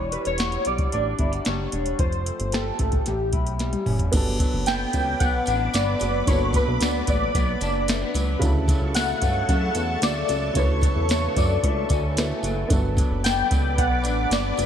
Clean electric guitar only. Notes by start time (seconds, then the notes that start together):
Already playing: E3 B3 D4 F#4
0.11 G3
0.39 F#4
0.66 G3
0.93 D4
1.19 E4
1.32 F#4
1.46 G3
1.73 D4
1.99 F3
2.26 A3
2.53 G4
2.80 A3
3.06 A2
3.33 E4
3.59 G3
3.86 C#4
4.40 F#3
4.67 B3
4.94 F#3
5.21 B3
5.48 D4
5.75 B3
6.01 F#3
6.55 F#3
6.82 B3
7.08 F#3
7.35 B3
7.62 D4
7.88 A3
8.02 B3
8.15 F#3
8.69 F#3
8.96 A3
9.22 F#3
9.49 A3
10.03 A3
10.30 F#3
10.56 D3
10.83 F#3
11.10 A3
11.37 F#3
11.64 A3
11.91 C#4
12.18 A3
12.44 F#3
12.97 F#3
13.23 B3
13.51 F#3
13.78 B3
14.04 D4
14.30 B3
14.57 F#3